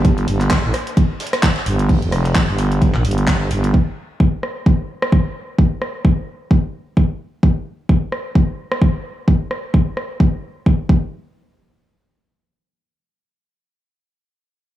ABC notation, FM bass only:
X:1
M:4/4
L:1/16
Q:"Swing 16ths" 1/4=130
K:Gm
V:1 name="FM bass" clef=bass
G,,,2 G,,,3 A,,, z8 G,,,2- | G,,, F,,,4 G,,,4 B,,, G,,,4 G,,,2 | z16 | z16 |
z16 | z16 | z16 | z16 |]